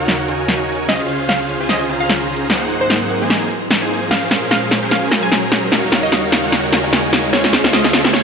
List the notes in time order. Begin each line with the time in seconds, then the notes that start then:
Already playing: D#2 C#3 F#4 F5, riser
0.00 D#4 F#4 A#4 C#5 F#5
0.08 snare, closed hi-hat
0.28 D#4 F#4 A#4 C#5 G#5, closed hi-hat
0.48 snare, closed hi-hat
0.69 closed hi-hat
0.72 closed hi-hat
0.75 closed hi-hat
0.89 C#2 C#4 F4 G#4 C5 D#5 F5, snare, closed hi-hat
1.09 closed hi-hat
1.29 F5, snare, closed hi-hat
1.49 closed hi-hat
1.60 C#4 F4 G#4 C5 G#5
1.69 D#5, snare, closed hi-hat
1.89 C#4 F4 G#4 C5 A#5, closed hi-hat
2.00 F5
2.10 snare, closed hi-hat
2.30 closed hi-hat
2.33 closed hi-hat
2.36 closed hi-hat
2.50 G#2 F#3 A#3 C4 D#4 G#4 A#4 C5 F#5, snare, closed hi-hat
2.70 closed hi-hat
2.81 C5
2.90 snare, closed hi-hat
3.10 closed hi-hat
3.21 A#3 D#4 G#4 C5 G#5
3.30 snare, closed hi-hat
3.50 closed hi-hat
3.71 snare, closed hi-hat
3.82 A#3 D#4 G#4 C5 G#5
3.91 closed hi-hat
3.94 closed hi-hat
3.97 closed hi-hat
4.11 A#2 G#3 C#4 G#4 A#4 C5 F5, snare, closed hi-hat
4.31 snare, closed hi-hat
4.51 F5, snare, closed hi-hat
4.71 snare, open hi-hat
4.82 C#4 G#4 A#4 C5 G#5
4.91 F5, snare, closed hi-hat
5.11 C#4 G#4 A#4 C5 A#5, snare, closed hi-hat
5.23 G#5
5.32 snare, closed hi-hat
5.52 snare, closed hi-hat
5.55 closed hi-hat
5.58 closed hi-hat
5.72 D#2 C#3 D#4 F#4 A#4 C#5 F5, snare, closed hi-hat
5.92 snare, closed hi-hat
6.03 D#5
6.12 snare, closed hi-hat
6.32 snare, open hi-hat
6.43 D#4 F#4 A#4 C#5 F#5
6.52 snare, closed hi-hat
6.73 D#4 F#4 A#4 C#5 G#5, snare, closed hi-hat
6.93 snare, closed hi-hat
7.13 snare, closed hi-hat
7.17 closed hi-hat
7.20 closed hi-hat
7.33 C#2 C#4 F4 G#4 C5 C#5 F5, snare, closed hi-hat
7.44 snare
7.53 snare, closed hi-hat
7.64 snare
7.73 D#5, snare, closed hi-hat
7.84 snare
7.93 snare, open hi-hat
8.04 C#4 F4 G#4 C5 G#5, snare
8.13 C#5, snare, closed hi-hat